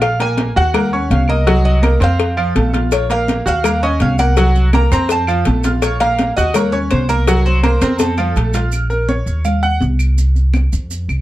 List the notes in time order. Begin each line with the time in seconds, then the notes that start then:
Already playing: A#1 F4 F5 F6
0.01 F5, cowbell, high conga, claves
0.20 A#3 A#4 G#5 A#5, cowbell, high conga
0.38 cowbell, high conga
0.56 D#2 F#4 F#5 F#6, high conga
0.74 A#3 A#4 A#5, cowbell, high conga, low conga, claves
0.93 C#4 C#5 C#6, high conga
1.10 C2 F5, cowbell, high conga
1.28 A#3 A#4 D#5 A#5, claves
1.47 F#3 F#4 F#5, cowbell, high conga
1.65 D#5, high conga
1.82 A#3 A#4 A#5, cowbell, high conga, claves
2.00 F2 C4 C5 F5 C6, cowbell
2.19 cowbell, high conga
2.37 F3 F4 F5, high conga, claves
2.55 A#1 A3 A4 A5, cowbell, high conga
2.73 F4 F5 F6, cowbell, high conga
2.92 C#5, cowbell, claves, maracas
3.10 A#3 A#4 F5 A#5, cowbell, high conga, maracas
3.28 cowbell, high conga, maracas
3.46 D#2 F#4 F5 F#5 F#6, high conga, maracas
3.64 A#3 A#4 A#5, cowbell, high conga, low conga, claves, maracas
3.83 C#4 C#5 D#5 C#6, high conga, maracas
4.00 C2 F5, cowbell, high conga, maracas
4.19 A#3 A#4 F#5 A#5, high conga, claves, maracas
4.37 F#3 F#4 F#5, cowbell, high conga, maracas
4.55 high conga, maracas
4.73 A#3 A#4 A#5, cowbell, high conga, claves, maracas
4.91 F2 C4 C5 A#5 C6, cowbell, high conga, maracas
5.09 A5, cowbell, high conga, maracas
5.27 F3 F4 F5, high conga, claves, maracas
5.45 A#1 A3 A4 A5, cowbell, high conga, maracas
5.64 F4 F5 F6, cowbell, high conga, maracas
5.82 C#5, cowbell, high conga, claves, maracas
6.00 A#3 A#4 F5 A#5, cowbell, high conga, maracas
6.19 cowbell, high conga, maracas
6.37 D#2 F#4 D#5 F#5 F#6, high conga, maracas
6.54 A#3 A#4 C#5 A#5, cowbell, high conga, low conga, claves, maracas
6.72 C#4 C#5 C#6, high conga, low conga, maracas
6.90 C2 C5, cowbell, high conga, maracas
7.09 A#3 A#4 A#5, claves, maracas
7.27 F#3 F#4 F#5, cowbell, maracas
7.46 C5, high conga, maracas
7.63 A#3 A#4 C5 A#5, cowbell, high conga, claves, maracas
7.81 F2 C4 A#4 C5 C6, cowbell, high conga, maracas
7.99 A4, cowbell, high conga, maracas
8.17 F3 F4 F5, low conga, claves, maracas
8.36 A#1 A3 A4 A5, cowbell, maracas
8.53 F4 F5 F6, cowbell, low conga, maracas
8.72 high conga, claves, maracas
8.90 A#4, high conga, maracas
9.09 C#5, high conga, maracas
9.26 D#2, high conga, maracas
9.45 F5, high conga, low conga, claves, maracas
9.63 F#5, high conga, maracas
9.81 C2, high conga, maracas
9.99 claves, maracas
10.17 high conga, maracas
10.35 high conga, maracas
10.54 high conga, claves, maracas
10.73 F2, high conga, maracas
10.91 high conga, maracas
11.09 C2, high conga, claves, maracas